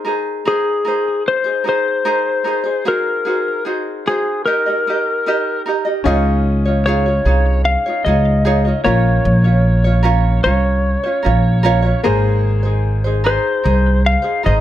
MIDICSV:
0, 0, Header, 1, 5, 480
1, 0, Start_track
1, 0, Key_signature, -4, "major"
1, 0, Tempo, 800000
1, 1714, Time_signature, 4, 2, 24, 8
1, 8764, End_track
2, 0, Start_track
2, 0, Title_t, "Electric slide guitar"
2, 0, Program_c, 0, 29
2, 286, Note_on_c, 0, 68, 67
2, 736, Note_off_c, 0, 68, 0
2, 768, Note_on_c, 0, 72, 86
2, 1005, Note_off_c, 0, 72, 0
2, 1012, Note_on_c, 0, 72, 87
2, 1726, Note_off_c, 0, 72, 0
2, 1729, Note_on_c, 0, 70, 67
2, 2178, Note_off_c, 0, 70, 0
2, 2445, Note_on_c, 0, 68, 77
2, 2664, Note_off_c, 0, 68, 0
2, 2673, Note_on_c, 0, 70, 85
2, 3370, Note_off_c, 0, 70, 0
2, 4115, Note_on_c, 0, 73, 70
2, 4588, Note_off_c, 0, 73, 0
2, 4591, Note_on_c, 0, 77, 97
2, 4815, Note_off_c, 0, 77, 0
2, 4827, Note_on_c, 0, 75, 89
2, 5304, Note_off_c, 0, 75, 0
2, 5307, Note_on_c, 0, 73, 84
2, 6256, Note_off_c, 0, 73, 0
2, 6263, Note_on_c, 0, 73, 74
2, 7203, Note_off_c, 0, 73, 0
2, 7959, Note_on_c, 0, 72, 68
2, 8411, Note_off_c, 0, 72, 0
2, 8438, Note_on_c, 0, 77, 95
2, 8673, Note_off_c, 0, 77, 0
2, 8676, Note_on_c, 0, 75, 93
2, 8764, Note_off_c, 0, 75, 0
2, 8764, End_track
3, 0, Start_track
3, 0, Title_t, "Ukulele"
3, 0, Program_c, 1, 24
3, 28, Note_on_c, 1, 70, 60
3, 34, Note_on_c, 1, 63, 61
3, 40, Note_on_c, 1, 68, 55
3, 48, Note_on_c, 1, 72, 57
3, 265, Note_off_c, 1, 70, 0
3, 268, Note_off_c, 1, 63, 0
3, 272, Note_on_c, 1, 70, 63
3, 273, Note_off_c, 1, 68, 0
3, 276, Note_on_c, 1, 63, 59
3, 277, Note_off_c, 1, 72, 0
3, 280, Note_on_c, 1, 68, 61
3, 284, Note_on_c, 1, 72, 69
3, 501, Note_off_c, 1, 70, 0
3, 508, Note_off_c, 1, 63, 0
3, 508, Note_on_c, 1, 70, 51
3, 515, Note_off_c, 1, 68, 0
3, 516, Note_on_c, 1, 63, 47
3, 519, Note_off_c, 1, 72, 0
3, 522, Note_on_c, 1, 68, 57
3, 527, Note_on_c, 1, 72, 56
3, 857, Note_off_c, 1, 72, 0
3, 864, Note_on_c, 1, 72, 47
3, 867, Note_off_c, 1, 68, 0
3, 871, Note_off_c, 1, 70, 0
3, 874, Note_on_c, 1, 68, 42
3, 875, Note_off_c, 1, 63, 0
3, 886, Note_on_c, 1, 63, 35
3, 984, Note_on_c, 1, 70, 47
3, 985, Note_off_c, 1, 63, 0
3, 989, Note_off_c, 1, 72, 0
3, 993, Note_on_c, 1, 63, 55
3, 994, Note_off_c, 1, 68, 0
3, 1002, Note_on_c, 1, 68, 55
3, 1005, Note_on_c, 1, 72, 55
3, 1223, Note_off_c, 1, 70, 0
3, 1226, Note_off_c, 1, 63, 0
3, 1229, Note_off_c, 1, 68, 0
3, 1230, Note_on_c, 1, 70, 68
3, 1233, Note_on_c, 1, 63, 69
3, 1234, Note_off_c, 1, 72, 0
3, 1236, Note_on_c, 1, 68, 77
3, 1242, Note_on_c, 1, 72, 80
3, 1458, Note_off_c, 1, 70, 0
3, 1464, Note_off_c, 1, 63, 0
3, 1466, Note_on_c, 1, 70, 50
3, 1471, Note_on_c, 1, 63, 54
3, 1474, Note_off_c, 1, 68, 0
3, 1478, Note_off_c, 1, 72, 0
3, 1481, Note_on_c, 1, 68, 56
3, 1485, Note_on_c, 1, 72, 57
3, 1574, Note_off_c, 1, 72, 0
3, 1582, Note_on_c, 1, 72, 44
3, 1584, Note_off_c, 1, 68, 0
3, 1590, Note_off_c, 1, 63, 0
3, 1590, Note_off_c, 1, 70, 0
3, 1591, Note_on_c, 1, 68, 42
3, 1597, Note_on_c, 1, 63, 32
3, 1704, Note_off_c, 1, 68, 0
3, 1706, Note_off_c, 1, 63, 0
3, 1708, Note_off_c, 1, 72, 0
3, 1711, Note_on_c, 1, 68, 67
3, 1713, Note_on_c, 1, 63, 71
3, 1719, Note_on_c, 1, 66, 74
3, 1723, Note_on_c, 1, 72, 70
3, 1943, Note_off_c, 1, 68, 0
3, 1950, Note_on_c, 1, 68, 51
3, 1951, Note_off_c, 1, 63, 0
3, 1957, Note_off_c, 1, 66, 0
3, 1959, Note_off_c, 1, 72, 0
3, 1959, Note_on_c, 1, 63, 52
3, 1963, Note_on_c, 1, 66, 57
3, 1968, Note_on_c, 1, 72, 52
3, 2182, Note_off_c, 1, 68, 0
3, 2189, Note_on_c, 1, 68, 58
3, 2190, Note_off_c, 1, 63, 0
3, 2194, Note_off_c, 1, 66, 0
3, 2194, Note_off_c, 1, 72, 0
3, 2197, Note_on_c, 1, 63, 66
3, 2201, Note_on_c, 1, 66, 61
3, 2202, Note_on_c, 1, 72, 57
3, 2429, Note_off_c, 1, 68, 0
3, 2436, Note_off_c, 1, 63, 0
3, 2436, Note_on_c, 1, 68, 46
3, 2438, Note_off_c, 1, 66, 0
3, 2438, Note_off_c, 1, 72, 0
3, 2442, Note_on_c, 1, 63, 44
3, 2448, Note_on_c, 1, 66, 51
3, 2454, Note_on_c, 1, 72, 58
3, 2670, Note_off_c, 1, 63, 0
3, 2672, Note_off_c, 1, 66, 0
3, 2674, Note_on_c, 1, 70, 58
3, 2675, Note_off_c, 1, 68, 0
3, 2678, Note_on_c, 1, 63, 54
3, 2681, Note_off_c, 1, 72, 0
3, 2683, Note_on_c, 1, 67, 65
3, 2684, Note_on_c, 1, 75, 67
3, 2789, Note_off_c, 1, 75, 0
3, 2794, Note_off_c, 1, 70, 0
3, 2796, Note_off_c, 1, 63, 0
3, 2796, Note_on_c, 1, 75, 39
3, 2799, Note_off_c, 1, 67, 0
3, 2807, Note_on_c, 1, 67, 41
3, 2816, Note_on_c, 1, 63, 38
3, 2915, Note_off_c, 1, 75, 0
3, 2919, Note_off_c, 1, 63, 0
3, 2921, Note_off_c, 1, 67, 0
3, 2923, Note_on_c, 1, 70, 52
3, 2926, Note_on_c, 1, 63, 49
3, 2936, Note_on_c, 1, 67, 46
3, 2939, Note_on_c, 1, 75, 54
3, 3151, Note_off_c, 1, 70, 0
3, 3155, Note_off_c, 1, 63, 0
3, 3158, Note_on_c, 1, 70, 63
3, 3160, Note_off_c, 1, 67, 0
3, 3162, Note_off_c, 1, 75, 0
3, 3163, Note_on_c, 1, 63, 73
3, 3168, Note_on_c, 1, 67, 73
3, 3169, Note_on_c, 1, 75, 75
3, 3387, Note_off_c, 1, 70, 0
3, 3392, Note_off_c, 1, 67, 0
3, 3394, Note_on_c, 1, 70, 56
3, 3395, Note_off_c, 1, 63, 0
3, 3402, Note_off_c, 1, 75, 0
3, 3402, Note_on_c, 1, 63, 55
3, 3407, Note_on_c, 1, 67, 51
3, 3414, Note_on_c, 1, 75, 56
3, 3502, Note_off_c, 1, 75, 0
3, 3509, Note_on_c, 1, 75, 50
3, 3511, Note_off_c, 1, 67, 0
3, 3514, Note_off_c, 1, 70, 0
3, 3518, Note_off_c, 1, 63, 0
3, 3518, Note_on_c, 1, 67, 43
3, 3525, Note_on_c, 1, 63, 42
3, 3632, Note_off_c, 1, 63, 0
3, 3632, Note_off_c, 1, 75, 0
3, 3632, Note_on_c, 1, 68, 82
3, 3636, Note_off_c, 1, 67, 0
3, 3639, Note_on_c, 1, 65, 87
3, 3640, Note_on_c, 1, 63, 88
3, 3646, Note_on_c, 1, 73, 104
3, 3986, Note_off_c, 1, 73, 0
3, 3993, Note_off_c, 1, 68, 0
3, 3993, Note_on_c, 1, 73, 51
3, 3997, Note_off_c, 1, 63, 0
3, 3997, Note_off_c, 1, 65, 0
3, 4005, Note_on_c, 1, 65, 42
3, 4010, Note_on_c, 1, 63, 35
3, 4114, Note_off_c, 1, 73, 0
3, 4120, Note_off_c, 1, 65, 0
3, 4121, Note_on_c, 1, 68, 72
3, 4122, Note_off_c, 1, 63, 0
3, 4129, Note_on_c, 1, 63, 67
3, 4130, Note_on_c, 1, 65, 72
3, 4134, Note_on_c, 1, 73, 68
3, 4228, Note_off_c, 1, 73, 0
3, 4235, Note_on_c, 1, 73, 40
3, 4238, Note_off_c, 1, 68, 0
3, 4239, Note_off_c, 1, 65, 0
3, 4242, Note_off_c, 1, 63, 0
3, 4246, Note_on_c, 1, 65, 39
3, 4254, Note_on_c, 1, 63, 30
3, 4351, Note_off_c, 1, 63, 0
3, 4352, Note_on_c, 1, 68, 56
3, 4355, Note_off_c, 1, 73, 0
3, 4358, Note_off_c, 1, 65, 0
3, 4358, Note_on_c, 1, 63, 55
3, 4365, Note_on_c, 1, 65, 57
3, 4370, Note_on_c, 1, 73, 59
3, 4708, Note_off_c, 1, 73, 0
3, 4713, Note_off_c, 1, 68, 0
3, 4715, Note_on_c, 1, 73, 49
3, 4716, Note_off_c, 1, 63, 0
3, 4718, Note_off_c, 1, 65, 0
3, 4725, Note_on_c, 1, 65, 45
3, 4734, Note_on_c, 1, 63, 41
3, 4831, Note_off_c, 1, 63, 0
3, 4832, Note_on_c, 1, 68, 49
3, 4834, Note_off_c, 1, 73, 0
3, 4838, Note_on_c, 1, 63, 57
3, 4839, Note_off_c, 1, 65, 0
3, 4846, Note_on_c, 1, 65, 56
3, 4848, Note_on_c, 1, 73, 69
3, 5062, Note_off_c, 1, 68, 0
3, 5069, Note_off_c, 1, 63, 0
3, 5069, Note_on_c, 1, 68, 79
3, 5070, Note_off_c, 1, 65, 0
3, 5073, Note_off_c, 1, 73, 0
3, 5076, Note_on_c, 1, 63, 82
3, 5078, Note_on_c, 1, 65, 76
3, 5080, Note_on_c, 1, 73, 85
3, 5182, Note_off_c, 1, 73, 0
3, 5189, Note_on_c, 1, 73, 43
3, 5192, Note_off_c, 1, 68, 0
3, 5193, Note_off_c, 1, 65, 0
3, 5195, Note_off_c, 1, 63, 0
3, 5201, Note_on_c, 1, 65, 44
3, 5209, Note_on_c, 1, 63, 42
3, 5306, Note_on_c, 1, 70, 60
3, 5309, Note_off_c, 1, 65, 0
3, 5312, Note_off_c, 1, 63, 0
3, 5312, Note_off_c, 1, 73, 0
3, 5314, Note_on_c, 1, 61, 67
3, 5317, Note_on_c, 1, 65, 69
3, 5321, Note_on_c, 1, 73, 75
3, 5657, Note_off_c, 1, 73, 0
3, 5664, Note_on_c, 1, 73, 45
3, 5665, Note_off_c, 1, 65, 0
3, 5669, Note_off_c, 1, 70, 0
3, 5672, Note_on_c, 1, 65, 40
3, 5674, Note_off_c, 1, 61, 0
3, 5682, Note_on_c, 1, 61, 33
3, 5898, Note_off_c, 1, 73, 0
3, 5905, Note_on_c, 1, 73, 54
3, 5909, Note_off_c, 1, 65, 0
3, 5915, Note_off_c, 1, 61, 0
3, 5916, Note_on_c, 1, 65, 48
3, 5922, Note_on_c, 1, 61, 46
3, 6015, Note_off_c, 1, 61, 0
3, 6016, Note_on_c, 1, 70, 72
3, 6018, Note_off_c, 1, 65, 0
3, 6022, Note_on_c, 1, 61, 77
3, 6024, Note_off_c, 1, 73, 0
3, 6026, Note_on_c, 1, 65, 78
3, 6031, Note_on_c, 1, 73, 95
3, 6254, Note_off_c, 1, 70, 0
3, 6261, Note_on_c, 1, 70, 54
3, 6263, Note_off_c, 1, 61, 0
3, 6269, Note_off_c, 1, 65, 0
3, 6270, Note_on_c, 1, 61, 58
3, 6272, Note_off_c, 1, 73, 0
3, 6276, Note_on_c, 1, 65, 54
3, 6279, Note_on_c, 1, 73, 60
3, 6613, Note_off_c, 1, 73, 0
3, 6620, Note_on_c, 1, 73, 51
3, 6626, Note_off_c, 1, 65, 0
3, 6627, Note_off_c, 1, 70, 0
3, 6631, Note_off_c, 1, 61, 0
3, 6633, Note_on_c, 1, 65, 47
3, 6641, Note_on_c, 1, 61, 38
3, 6736, Note_on_c, 1, 70, 54
3, 6738, Note_off_c, 1, 61, 0
3, 6741, Note_off_c, 1, 65, 0
3, 6746, Note_off_c, 1, 73, 0
3, 6746, Note_on_c, 1, 61, 58
3, 6749, Note_on_c, 1, 65, 61
3, 6756, Note_on_c, 1, 73, 66
3, 6971, Note_off_c, 1, 70, 0
3, 6978, Note_on_c, 1, 70, 87
3, 6980, Note_off_c, 1, 61, 0
3, 6980, Note_off_c, 1, 65, 0
3, 6986, Note_off_c, 1, 73, 0
3, 6987, Note_on_c, 1, 65, 99
3, 6988, Note_on_c, 1, 61, 92
3, 6994, Note_on_c, 1, 73, 99
3, 7087, Note_off_c, 1, 73, 0
3, 7094, Note_on_c, 1, 73, 55
3, 7099, Note_off_c, 1, 65, 0
3, 7105, Note_off_c, 1, 70, 0
3, 7107, Note_off_c, 1, 61, 0
3, 7107, Note_on_c, 1, 65, 48
3, 7115, Note_on_c, 1, 61, 45
3, 7221, Note_off_c, 1, 61, 0
3, 7223, Note_off_c, 1, 73, 0
3, 7223, Note_on_c, 1, 70, 80
3, 7224, Note_on_c, 1, 63, 71
3, 7227, Note_off_c, 1, 65, 0
3, 7229, Note_on_c, 1, 68, 77
3, 7236, Note_on_c, 1, 72, 81
3, 7569, Note_off_c, 1, 72, 0
3, 7577, Note_on_c, 1, 72, 46
3, 7583, Note_off_c, 1, 68, 0
3, 7587, Note_off_c, 1, 70, 0
3, 7588, Note_off_c, 1, 63, 0
3, 7590, Note_on_c, 1, 68, 49
3, 7597, Note_on_c, 1, 63, 39
3, 7818, Note_off_c, 1, 72, 0
3, 7825, Note_on_c, 1, 72, 53
3, 7829, Note_off_c, 1, 68, 0
3, 7833, Note_off_c, 1, 63, 0
3, 7837, Note_on_c, 1, 68, 43
3, 7840, Note_on_c, 1, 63, 42
3, 7943, Note_on_c, 1, 70, 71
3, 7945, Note_off_c, 1, 63, 0
3, 7947, Note_off_c, 1, 68, 0
3, 7948, Note_off_c, 1, 72, 0
3, 7952, Note_on_c, 1, 63, 67
3, 7954, Note_on_c, 1, 68, 70
3, 7959, Note_on_c, 1, 72, 78
3, 8174, Note_off_c, 1, 70, 0
3, 8180, Note_off_c, 1, 63, 0
3, 8181, Note_on_c, 1, 70, 51
3, 8187, Note_on_c, 1, 63, 54
3, 8188, Note_off_c, 1, 68, 0
3, 8195, Note_off_c, 1, 72, 0
3, 8195, Note_on_c, 1, 68, 58
3, 8202, Note_on_c, 1, 72, 64
3, 8525, Note_off_c, 1, 72, 0
3, 8532, Note_on_c, 1, 72, 47
3, 8534, Note_off_c, 1, 68, 0
3, 8541, Note_on_c, 1, 68, 49
3, 8542, Note_off_c, 1, 63, 0
3, 8546, Note_off_c, 1, 70, 0
3, 8549, Note_on_c, 1, 63, 40
3, 8658, Note_off_c, 1, 63, 0
3, 8659, Note_on_c, 1, 70, 57
3, 8661, Note_off_c, 1, 72, 0
3, 8664, Note_off_c, 1, 68, 0
3, 8665, Note_on_c, 1, 63, 62
3, 8672, Note_on_c, 1, 68, 56
3, 8677, Note_on_c, 1, 72, 61
3, 8764, Note_off_c, 1, 63, 0
3, 8764, Note_off_c, 1, 68, 0
3, 8764, Note_off_c, 1, 70, 0
3, 8764, Note_off_c, 1, 72, 0
3, 8764, End_track
4, 0, Start_track
4, 0, Title_t, "Upright piano"
4, 0, Program_c, 2, 0
4, 3624, Note_on_c, 2, 61, 84
4, 3631, Note_on_c, 2, 65, 65
4, 3636, Note_on_c, 2, 75, 81
4, 3737, Control_c, 2, 64, 127
4, 4490, Note_off_c, 2, 61, 0
4, 4493, Note_off_c, 2, 65, 0
4, 4496, Note_off_c, 2, 75, 0
4, 5303, Note_on_c, 2, 58, 70
4, 5310, Note_on_c, 2, 65, 64
4, 5313, Note_on_c, 2, 73, 77
4, 5321, Control_c, 2, 64, 0
4, 5412, Control_c, 2, 64, 127
4, 6169, Note_off_c, 2, 58, 0
4, 6172, Note_off_c, 2, 65, 0
4, 6174, Note_off_c, 2, 73, 0
4, 7221, Note_on_c, 2, 58, 89
4, 7226, Note_on_c, 2, 68, 81
4, 7233, Note_on_c, 2, 72, 91
4, 7241, Control_c, 2, 64, 0
4, 7356, Control_c, 2, 64, 127
4, 8086, Note_off_c, 2, 58, 0
4, 8089, Note_off_c, 2, 68, 0
4, 8092, Note_off_c, 2, 72, 0
4, 8764, End_track
5, 0, Start_track
5, 0, Title_t, "Upright bass"
5, 0, Program_c, 3, 32
5, 3634, Note_on_c, 3, 37, 89
5, 4330, Note_off_c, 3, 37, 0
5, 4354, Note_on_c, 3, 36, 80
5, 4649, Note_off_c, 3, 36, 0
5, 4837, Note_on_c, 3, 37, 96
5, 5229, Note_off_c, 3, 37, 0
5, 5314, Note_on_c, 3, 34, 82
5, 5511, Note_off_c, 3, 34, 0
5, 5552, Note_on_c, 3, 34, 102
5, 6248, Note_off_c, 3, 34, 0
5, 6274, Note_on_c, 3, 36, 81
5, 6569, Note_off_c, 3, 36, 0
5, 6756, Note_on_c, 3, 34, 96
5, 7148, Note_off_c, 3, 34, 0
5, 7234, Note_on_c, 3, 32, 82
5, 8019, Note_off_c, 3, 32, 0
5, 8193, Note_on_c, 3, 36, 95
5, 8487, Note_off_c, 3, 36, 0
5, 8677, Note_on_c, 3, 32, 98
5, 8764, Note_off_c, 3, 32, 0
5, 8764, End_track
0, 0, End_of_file